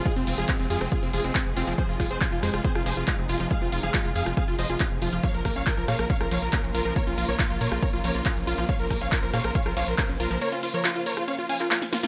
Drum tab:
RD |----------------|----------------|----------------|x-x-x-x-x-x-x-x-|
HH |xxoxxxoxxxoxxxox|xxoxxxoxxxoxxxox|xxoxxxoxxxo-xxox|xxoxxxoxxxoxxxo-|
SH |xx-xxx-xxx-xxx-x|xx-xxx-xxx-xxx-x|xx-xxx-xxx-xxx-x|xx-xxx-xxx-xxx-x|
CP |----x-------x---|----x-------x---|----x-------x---|----x-------x---|
SD |-------r--------|--r---rr-r------|-------r--------|--r---rr-r------|
BD |o---o---o---o---|o-o-o---o---o---|o---o---o---o---|o-o-o---o---o---|

RD |x-x-x-x-x-x-x-x-|x-x-x-x-x-x-x-x-|x-x-x-x-x-x-x-x-|
HH |xxoxxxo-xxoxxxox|xxo-xxoxxxoxxxox|xxoxxxoxxxoxxxo-|
SH |xx-xxx-xxx-xxx-x|xx-xxx-xxx-xxx-x|xx-xxx-xxx-xxx-x|
CP |----x-------x---|----x-------x---|----x------xx---|
SD |-------r--------|--r---rr-r------|-------r-----ooo|
BD |o---o---o---o---|o-o-o---o---o---|----------------|